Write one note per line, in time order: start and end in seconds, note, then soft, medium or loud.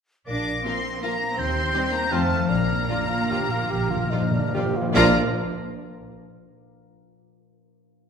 0.27 0.59 A#1 soft
0.27 1.39 A#2 soft
0.27 0.99 A#3 soft
0.27 0.63 D4 medium
0.27 0.62 D6 medium
0.27 0.99 A#6 soft
0.45 1.19 D4 soft
0.65 0.79 F3 soft
0.65 0.79 A#3 soft
0.65 0.73 A#3 soft
0.65 1.02 C4 medium
0.65 1.02 F4 soft
0.65 0.73 F4 soft
0.65 0.74 A#4 soft
0.65 0.74 F5 soft
0.65 1.03 C6 medium
0.84 1.39 A#4 soft
1.02 1.15 F3 soft
1.02 1.15 A#3 soft
1.02 1.39 A#3 medium
1.02 1.11 A#3 soft
1.02 1.38 A#3 medium
1.02 1.39 F4 soft
1.02 1.11 F4 soft
1.02 1.12 A#4 soft
1.02 1.12 F5 soft
1.02 1.37 A#5 medium
1.02 1.40 A#6 medium
1.21 1.39 D4 soft
1.37 1.67 D#2 medium
1.37 2.12 D#3 medium
1.37 2.11 C4 medium
1.37 1.92 C4 medium
1.37 1.93 C6 medium
1.37 2.13 G6 medium
1.55 2.13 D#4 soft
1.73 1.87 G3 medium
1.73 1.87 C4 medium
1.73 1.82 C4 medium
1.73 1.82 D#4 medium
1.73 2.13 G4 medium
1.73 1.82 G4 medium
1.73 1.81 C5 medium
1.92 2.11 A#3 medium
1.92 2.29 C5 medium
1.92 2.11 A#5 medium
2.11 2.42 F2 medium
2.11 3.90 F3 medium
2.11 2.25 F3 medium
2.11 2.48 A3 medium
2.11 2.51 C4 medium
2.11 2.19 C4 medium
2.11 2.25 C4 medium
2.11 2.20 F4 medium
2.11 2.20 C5 medium
2.11 2.49 A5 medium
2.11 2.49 F6 medium
2.30 2.88 F4 soft
2.30 2.50 C5 soft
2.49 2.82 A#1 medium
2.49 3.70 A#2 medium
2.49 2.56 A#2 soft
2.49 4.55 A#3 medium
2.49 2.85 D4 medium
2.49 4.51 A#5 medium
2.49 4.72 F6 medium
2.57 2.63 A#2 soft
2.64 2.71 A#2 soft
2.68 3.51 D4 soft
2.72 2.79 A#2 soft
2.80 2.88 A#2 soft
2.88 2.96 A#2 soft
2.88 3.04 F3 soft
2.88 2.97 A#3 soft
2.88 3.04 D4 soft
2.88 3.11 D4 medium
2.88 3.30 F4 soft
2.88 2.97 F4 soft
2.88 2.98 F4 soft
2.88 2.98 D5 soft
3.05 3.13 A#2 soft
3.05 3.32 F4 medium
3.11 3.22 A#2 soft
3.11 4.33 A#4 soft
3.23 3.31 A#2 soft
3.30 3.39 A#2 soft
3.30 3.46 F3 soft
3.30 3.39 A#3 soft
3.30 3.46 D4 soft
3.30 3.39 F4 soft
3.30 3.40 F4 soft
3.30 4.11 F4 soft
3.30 3.53 G4 medium
3.30 3.39 D5 soft
3.40 3.48 A#2 soft
3.49 3.55 A#2 soft
3.49 4.75 D4 soft
3.49 3.72 F4 medium
3.56 3.64 A#2 soft
3.65 3.72 A#2 medium
3.70 4.05 A#1 medium
3.70 4.89 A#2 soft
3.70 3.79 A#2 soft
3.70 3.92 G4 medium
3.80 3.88 A#2 medium
3.89 3.95 A#2 medium
3.89 6.11 F3 soft
3.89 4.12 F4 medium
3.96 4.03 A#2 medium
4.04 4.12 A#2 medium
4.11 4.21 A#2 medium
4.11 4.28 F3 soft
4.11 4.20 A#3 soft
4.11 4.28 D4 soft
4.11 4.35 D#4 medium
4.11 4.20 F4 soft
4.11 4.54 F4 soft
4.11 4.20 F4 soft
4.11 4.20 D5 soft
4.22 4.30 A#2 medium
4.31 4.38 A#2 medium
4.31 4.54 D4 medium
4.31 4.94 A#4 soft
4.39 4.47 A#2 medium
4.48 4.55 A#2 medium
4.54 4.64 A#2 medium
4.54 4.69 F3 soft
4.54 4.62 A#3 soft
4.54 4.69 D4 soft
4.54 4.62 F4 soft
4.54 4.94 F4 soft
4.54 4.63 F4 soft
4.54 4.77 G4 medium
4.54 4.63 D5 soft
4.65 4.72 A#2 medium
4.73 4.80 A#2 medium
4.73 4.94 D4 soft
4.73 4.94 F4 medium
4.81 4.89 A#2 loud
4.89 5.16 A#2 medium
4.89 5.16 A#3 medium
4.94 5.16 A#1 medium
4.94 5.12 A#2 medium
4.94 5.10 F3 medium
4.94 5.16 A#3 medium
4.94 5.16 D4 medium
4.94 5.10 D4 medium
4.94 5.15 F4 medium
4.94 5.16 F4 medium
4.94 5.16 D5 medium
4.94 5.16 A#5 loud
4.94 5.16 F6 medium
4.99 5.16 A#4 medium
4.99 5.16 F5 medium